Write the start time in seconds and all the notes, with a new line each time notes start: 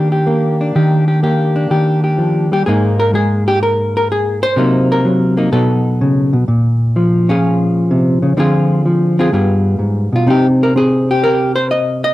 Already playing: D#3 A#3 D4 G4
0.12 G4
0.27 A#3
0.61 D4
0.75 D#3 G4
1.08 G4
1.23 A#3 G4
1.56 D4
1.71 D#3 G4
2.04 G4
2.18 F3
2.52 G3 G4
2.66 G#2 G#3 A#3 D#4 G#4
3.00 A#4
3.14 G#3 G#4
3.48 G4
3.63 A#4
3.97 A#4
4.12 G#4
4.43 C5
4.56 C3 F#3 A#3 D#4
4.92 A#4
5.05 F#3
5.37 A#3 D#4
5.52 B2 F#3 B3 D#4 A4
6.01 C#3
6.33 B2
6.48 A#2
6.96 F3
7.29 C#4 F4 G#4
7.91 C3
8.22 C#3
8.37 D3 F3 C4 F4 G#4
8.86 F3
9.19 C4 F4 G#4
9.32 G2 G3 B3 F4 G#4
9.79 G#2
10.13 B2 F4
10.26 C3 C4 D#4 G4
10.63 A#4
10.76 C4 G#4
11.11 G4
11.24 A#4
11.56 C5
11.71 D#5
12.04 D#5